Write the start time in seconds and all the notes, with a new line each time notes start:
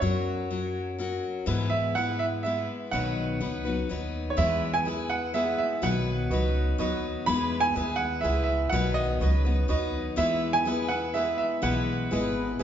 0.00 F#2 F#3 C#4 F#4 A#4 C#5
0.50 F#3 C#4 F#4 A#4
0.99 F#3 C#4 F#4 A#4
1.46 G#2 E3 G#3 B3 E4 B4
1.70 E5
1.95 G#3 B3 E4 B4 F#5
2.19 E5
2.43 G#3 B3 E4 B4 E5
2.91 B1 B2 D#3 F#3 B3 D#4 B4 F#5
3.40 C#2 F#3 B3 D#4 B4
3.65 F#3 B3 D#4 B4
3.89 D#2 F#3 B3 D#4 B4
4.30 C#5
4.37 E2 E3 G#3 B3 E4 B4 E5
4.74 G#5
4.85 G#3 B3 E4 G#4 B4 E5
5.10 F#5
5.34 G#3 B3 E4 G#4 B4 E5 F#5
5.58 E5
5.82 B1 B2 D#3 F#3 B3 D#4 B4 F#5
6.30 C#2 F#3 B3 D#4 F#4 B4 D#5
6.78 D#2 F#3 B3 D#4 F#4 B4 D#5
7.26 E2 E3 G#3 B3 E4 B4 B5
7.60 G#5
7.75 D#2 G#3 B3 E4 G#4 B4 E5
7.96 F#5
8.21 C#2 G#3 B3 E4 G#4 B4 E5
8.25 B4 E5
8.44 E5
8.69 B1 B2 D#3 F#3 B3 D#4 B4 F#5
8.94 D#5
9.21 C#2 F#3 B3 D#4 F#4 B4 D#5
9.45 F#3 B3 D#4 B4
9.68 D#2 F#3 B3 D#4 F#4 B4 D#5
10.16 E2 E3 G#3 B3 E4 B4 E5
10.53 G#5
10.65 G#3 B3 E4 G#4 B4 E5
10.89 B3 E4 B4 F#5
11.14 G#3 B3 E4 G#4 B4 E5
11.38 E5
11.62 B1 E3 G#3 B3 E4 B4 F#5
12.11 G#1 G#3 B3 E4 G#4 B4 D#5
12.59 G#3 G#4